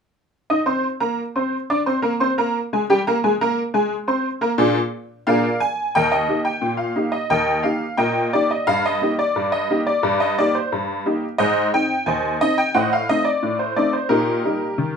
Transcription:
0.50 0.59 D#4 medium
0.50 0.59 D#5 medium
0.50 0.59 D#6 medium
0.66 0.85 C4 medium
0.66 0.85 C5 medium
0.66 0.85 C6 medium
1.00 1.20 A#3 medium
1.00 1.19 A#4 medium
1.00 1.19 A#5 medium
1.36 1.54 C4 medium
1.36 1.55 C5 medium
1.36 1.54 C6 medium
1.70 1.79 D4 medium
1.70 1.79 D5 medium
1.70 1.79 D6 medium
1.86 1.96 C4 medium
1.86 1.96 C5 medium
1.86 1.96 C6 medium
2.02 2.12 A#3 medium
2.02 2.12 A#4 medium
2.02 2.12 A#5 medium
2.20 2.30 C4 medium
2.20 2.30 C5 medium
2.20 2.30 C6 medium
2.38 2.57 A#3 medium
2.38 2.56 A#4 medium
2.38 2.57 A#5 medium
2.73 2.82 G#3 medium
2.73 2.82 G#4 medium
2.73 2.82 G#5 medium
2.90 2.99 G3 medium
2.90 2.98 G4 medium
2.90 2.99 G5 medium
3.07 3.16 A#3 medium
3.07 3.16 A#4 medium
3.07 3.16 A#5 medium
3.24 3.33 G#3 medium
3.24 3.33 G#4 medium
3.24 3.33 G#5 medium
3.41 3.59 A#3 medium
3.41 3.59 A#4 medium
3.41 3.59 A#5 medium
3.74 3.92 G#3 medium
3.74 3.93 G#4 medium
3.74 3.92 G#5 medium
4.08 4.26 C4 medium
4.08 4.26 C5 medium
4.08 4.26 C6 medium
4.41 4.50 A#3 medium
4.41 4.50 A#4 medium
4.41 4.51 A#5 medium
4.58 4.76 A#2 loud
4.58 4.77 A#3 medium
4.58 4.77 D4 medium
4.58 4.77 G#4 medium
5.27 5.46 A#2 medium
5.27 5.46 A#3 medium
5.27 5.45 D4 medium
5.27 5.46 G#4 medium
5.27 5.59 A#4 medium
5.27 5.59 D5 medium
5.27 5.59 F5 medium
5.60 5.93 G#5 loud
5.95 6.24 D#2 medium
5.95 6.11 A#4 medium
5.95 6.10 D#5 medium
5.95 6.12 G5 medium
6.12 6.39 D#5 medium
6.29 6.47 A#3 medium
6.29 6.48 D#4 soft
6.29 6.48 G4 soft
6.45 6.72 G5 medium
6.62 6.91 A#2 medium
6.77 7.11 F5 medium
6.96 7.15 A#3 medium
6.96 7.15 D#4 soft
6.96 7.15 G4 soft
7.12 7.29 D#5 medium
7.30 7.59 D#2 medium
7.30 7.63 A#4 medium
7.30 7.62 D#5 medium
7.30 7.63 G5 medium
7.63 7.83 A#3 soft
7.63 7.83 D#4 soft
7.63 7.84 G4 soft
7.63 7.96 F5 medium
7.97 8.27 A#2 medium
7.97 8.31 A#4 medium
7.97 8.30 D#5 medium
7.97 8.30 G5 medium
8.33 8.52 A#3 soft
8.33 8.53 D#4 soft
8.33 8.53 G4 soft
8.33 8.50 D5 medium
8.51 8.67 D#5 medium
8.67 8.96 G2 medium
8.67 8.84 F5 loud
8.86 9.12 D#5 medium
9.01 9.20 A#3 medium
9.01 9.21 D#4 soft
9.01 9.21 G4 medium
9.19 9.51 D5 medium
9.36 9.64 G2 medium
9.52 9.79 D#5 medium
9.70 9.89 A#3 medium
9.70 9.89 D#4 soft
9.70 9.89 G4 medium
9.87 10.19 D5 medium
10.03 10.32 G2 medium
10.20 10.37 D#5 medium
10.38 10.57 A#3 medium
10.38 10.57 D#4 soft
10.38 10.58 G4 medium
10.38 10.55 D5 medium
10.55 10.71 C5 medium
10.72 11.01 G2 medium
11.06 11.24 A#3 medium
11.06 11.25 D#4 medium
11.06 11.24 G4 medium
11.38 11.68 G#2 medium
11.38 11.71 G#4 medium
11.38 11.71 C5 medium
11.38 11.66 D#5 loud
11.74 11.93 C4 soft
11.74 11.93 D#4 medium
11.74 12.06 G5 medium
12.06 12.35 D#2 medium
12.06 12.39 C5 medium
12.06 12.39 D#5 medium
12.06 12.39 G#5 medium
12.41 12.60 C4 medium
12.41 12.60 D#4 medium
12.41 12.58 D#5 medium
12.58 12.75 G5 medium
12.75 13.03 A2 medium
12.75 12.91 C5 medium
12.75 12.91 D#5 medium
12.75 12.91 F#5 medium
12.93 13.09 F5 medium
13.09 13.28 A3 soft
13.09 13.28 C4 soft
13.09 13.28 D#4 soft
13.09 13.26 D#5 medium
13.25 13.57 D5 medium
13.43 13.72 A2 medium
13.59 13.76 C5 medium
13.76 13.95 A3 medium
13.76 13.96 C4 medium
13.76 13.96 D#4 medium
13.76 13.94 D5 medium
13.93 14.10 C5 medium
14.09 14.39 A#2 medium
14.09 14.44 D#4 medium
14.09 14.92 G4 medium
14.09 14.91 A#4 medium
14.45 14.64 G3 soft
14.45 14.63 A#3 soft
14.45 14.64 D#4 soft
14.78 14.97 D#3 medium

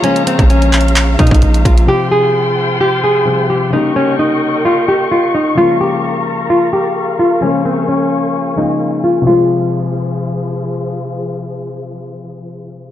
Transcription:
0.00 1.16 C#3 medium
0.00 1.17 F3 medium
0.00 1.85 G#3 medium
0.00 0.25 C#4 medium
0.00 1.85 C#5 medium
0.00 1.87 F5 medium
0.00 1.84 A#5 medium
0.00 closed hi-hat medium
0.05 1.17 G#3 medium
0.05 1.18 A#3 medium
0.05 1.19 F4 medium
0.16 closed hi-hat soft
0.27 0.48 C4 medium
0.27 closed hi-hat medium
0.39 1.16 A#1 loud
0.39 kick loud
0.39 closed hi-hat medium
0.50 1.15 C#4 medium
0.50 closed hi-hat medium
0.62 closed hi-hat medium
0.73 clap medium
0.73 closed hi-hat medium
0.81 closed hi-hat medium
0.88 closed hi-hat medium
0.96 clap loud
0.96 closed hi-hat medium
1.18 1.31 A#2 loud
1.18 1.88 C#3 soft
1.18 1.85 F3 soft
1.18 1.88 G#3 soft
1.18 1.89 A#3 soft
1.18 1.63 D#4 medium
1.18 1.87 F4 medium
1.18 kick medium
1.18 closed hi-hat medium
1.27 closed hi-hat medium
1.31 1.42 A#1 loud
1.31 kick medium
1.31 closed hi-hat medium
1.42 1.64 A#1 loud
1.42 closed hi-hat medium
1.54 closed hi-hat medium
1.65 1.87 A#1 loud
1.65 1.87 F4 medium
1.65 kick medium
1.65 closed hi-hat medium
1.78 closed hi-hat medium
1.85 3.22 C3 medium
1.85 3.23 F3 medium
1.85 3.71 F4 medium
1.85 3.24 F4 medium
1.85 2.10 G4 loud
1.85 3.71 C5 medium
1.85 3.71 G5 medium
1.85 3.71 C6 medium
2.11 2.77 G#4 medium
2.81 3.02 G4 medium
3.04 3.47 G#4 medium
3.25 3.72 C3 soft
3.25 3.73 F3 soft
3.25 3.70 G3 soft
3.25 3.73 F4 medium
3.25 3.73 G4 medium
3.50 3.71 G4 medium
3.70 5.53 C#3 medium
3.70 5.53 G3 medium
3.70 5.54 A#3 medium
3.70 3.95 D#4 loud
3.70 5.55 D#4 medium
3.70 5.56 A#4 medium
3.70 5.56 D#5 medium
3.70 5.56 G5 medium
3.70 7.39 C#6 medium
3.76 5.55 G4 medium
3.96 4.18 C#4 medium
4.19 4.63 D#4 medium
4.65 4.87 F4 medium
4.88 5.10 G4 medium
5.12 5.33 F4 medium
5.35 5.56 D#4 medium
5.55 7.37 C#3 medium
5.55 7.38 F3 medium
5.55 7.38 G#3 medium
5.55 7.39 A#3 medium
5.55 5.79 F4 loud
5.55 9.23 A#4 medium
5.55 9.23 F5 medium
5.55 7.40 A#5 medium
5.60 7.40 F4 medium
5.81 6.46 G4 medium
6.50 6.72 F4 medium
6.73 7.16 G4 medium
7.19 7.41 F4 medium
7.41 8.54 C#3 medium
7.41 8.55 F3 medium
7.41 8.56 G#3 medium
7.41 8.56 A#3 medium
7.41 7.64 C#4 medium
7.41 9.25 G#5 medium
7.41 9.25 C#6 medium
7.46 8.57 F4 medium
7.65 7.87 C4 medium
7.88 8.54 C#4 medium
8.56 9.26 C#3 medium
8.56 9.24 F3 soft
8.56 9.27 G#3 soft
8.56 9.27 A#3 soft
8.56 9.01 D#4 medium
8.56 9.27 F4 medium
9.04 9.25 F4 medium
9.22 12.91 C3 medium
9.22 12.91 F3 medium
9.27 12.91 F3 medium
9.27 12.91 G#3 medium
9.27 12.91 F4 medium
9.27 10.61 F4 medium
9.27 12.91 G#4 medium
9.27 12.91 C5 medium
9.32 12.91 F4 medium

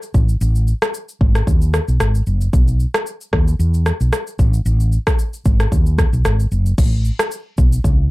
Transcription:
0.02 shaker medium
0.14 0.34 A1 loud
0.14 kick medium
0.14 shaker soft
0.29 shaker medium
0.41 0.72 A1 loud
0.41 shaker medium
0.55 shaker medium
0.68 shaker medium
0.82 cross-stick loud
0.82 shaker soft
0.94 shaker medium
1.09 shaker medium
1.21 1.41 G#1 loud
1.21 kick medium
1.35 cross-stick medium
1.35 shaker medium
1.47 1.78 D#2 loud
1.47 kick medium
1.47 shaker medium
1.62 shaker medium
1.74 cross-stick medium
1.74 shaker medium
1.88 1.97 B1 medium
1.88 shaker medium
2.00 2.20 G#1 medium
2.00 cross-stick loud
2.00 shaker medium
2.15 shaker medium
2.27 2.47 F#1 loud
2.27 shaker soft
2.41 shaker medium
2.53 2.84 B1 loud
2.53 kick loud
2.53 shaker medium
2.68 shaker medium
2.80 shaker medium
2.94 cross-stick loud
2.94 shaker soft
3.07 shaker medium
3.21 shaker medium
3.33 3.53 D#2 medium
3.33 kick loud
3.33 cross-stick medium
3.48 shaker medium
3.59 3.90 E2 loud
3.59 shaker medium
3.74 shaker medium
3.86 cross-stick medium
3.86 shaker medium
4.01 4.10 B1 medium
4.01 shaker medium
4.13 cross-stick loud
4.13 shaker medium
4.27 shaker medium
4.39 4.59 A1 loud
4.39 kick medium
4.39 shaker soft
4.54 shaker medium
4.66 4.97 A1 loud
4.66 shaker medium
4.80 shaker medium
4.92 shaker medium
5.07 kick medium
5.07 cross-stick loud
5.07 shaker soft
5.19 shaker medium
5.33 shaker medium
5.45 5.66 G#1 loud
5.45 kick loud
5.45 shaker medium
5.60 cross-stick medium
5.60 shaker medium
5.72 6.03 D#2 loud
5.72 kick medium
5.72 shaker medium
5.86 shaker medium
5.98 kick medium
5.98 cross-stick medium
5.98 shaker medium
6.13 6.22 B1 medium
6.13 shaker medium
6.25 6.45 G#1 loud
6.25 cross-stick loud
6.25 shaker medium
6.40 shaker medium
6.52 6.72 F#1 loud
6.52 shaker soft
6.66 shaker medium
6.78 7.09 A1 loud
6.78 kick loud
6.78 crash medium
6.78 shaker medium
7.05 shaker medium
7.19 cross-stick loud
7.19 shaker medium
7.31 shaker medium
7.58 7.78 B1 loud
7.58 kick medium
7.58 shaker medium
7.73 shaker medium
7.84 8.11 C#2 loud
7.84 kick medium
7.84 shaker medium

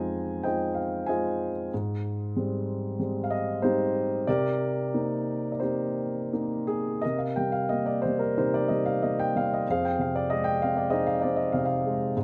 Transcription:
0.00 1.68 F2 soft
0.00 0.43 G#3 soft
0.00 0.44 D#4 soft
0.00 0.44 F4 soft
0.00 0.43 C5 medium
0.00 0.43 D#5 medium
0.00 0.42 G#5 medium
0.43 1.07 G#3 soft
0.43 1.07 D#4 soft
0.43 1.08 F4 soft
0.43 1.07 C5 soft
0.43 1.07 D#5 soft
0.43 0.77 G5 medium
0.75 1.08 F5 medium
1.06 1.70 G#3 soft
1.06 1.70 D#4 soft
1.06 1.70 F4 soft
1.06 1.68 C5 soft
1.06 1.68 D#5 soft
1.06 1.52 G#5 medium
1.74 4.24 G#2 medium
2.36 2.98 G3 soft
2.36 2.98 G#3 soft
2.36 2.98 C4 soft
2.99 3.61 G3 soft
2.99 3.62 G#3 soft
2.99 3.62 C4 soft
3.24 3.31 F5 medium
3.31 3.60 D#5 medium
3.62 4.26 G3 soft
3.62 4.26 G#3 soft
3.62 4.26 C4 soft
3.62 4.24 D#4 soft
3.62 4.24 G4 soft
3.62 4.29 C5 medium
4.27 6.99 C3 medium
4.27 5.58 G4 medium
4.27 5.59 A#4 medium
4.27 5.50 D5 medium
4.94 5.60 A#3 soft
4.94 5.60 C4 soft
4.94 5.60 D#4 soft
5.52 5.61 D5 soft
5.60 6.30 A#3 soft
5.60 6.30 C4 soft
5.60 6.32 D#4 soft
5.60 6.98 G4 soft
5.60 6.63 C5 medium
6.33 7.01 A#3 soft
6.33 7.00 C4 soft
6.33 7.01 D#4 soft
6.67 7.03 G#4 medium
7.02 8.32 G4 soft
7.02 8.17 A#4 soft
7.02 7.19 D#5 medium
7.06 8.38 C3 soft
7.18 7.34 F5 medium
7.36 8.04 G3 soft
7.36 7.52 G5 medium
7.52 7.68 F5 medium
7.69 8.97 A#3 soft
7.69 7.87 D#5 medium
7.86 8.02 D5 medium
8.02 8.69 G3 soft
8.02 8.19 C5 medium
8.19 8.34 A#4 medium
8.38 9.63 C3 soft
8.38 9.62 D#4 soft
8.38 9.62 G4 soft
8.38 8.53 C5 medium
8.54 8.68 D5 medium
8.68 9.34 G3 soft
8.68 8.85 D#5 medium
8.86 9.00 F5 medium
9.02 9.65 A#3 soft
9.02 9.17 D#5 medium
9.20 9.35 G5 medium
9.36 9.66 G3 soft
9.36 9.50 F5 medium
9.54 9.67 D#5 medium
9.68 12.13 F2 soft
9.68 10.89 G#4 medium
9.68 10.89 C5 medium
9.68 9.85 F5 medium
9.85 10.00 G5 medium
9.99 11.20 C3 soft
9.99 10.14 F5 medium
10.16 10.31 D5 medium
10.30 11.51 G#3 soft
10.30 10.44 D#5 medium
10.44 10.61 G5 medium
10.62 11.23 C4 soft
10.62 10.77 F5 medium
10.77 10.91 D5 medium
10.90 12.13 D#4 soft
10.90 12.11 G#4 soft
10.90 12.11 C5 medium
10.90 11.05 D#5 medium
11.07 11.21 F5 medium
11.22 12.14 C4 soft
11.22 11.38 D5 medium
11.36 11.54 D#5 medium
11.52 12.13 C3 soft
11.52 11.59 F5 medium
11.58 11.66 D#5 medium
11.65 11.97 F5 medium
11.85 12.15 G#3 medium
12.17 12.24 G#2 medium

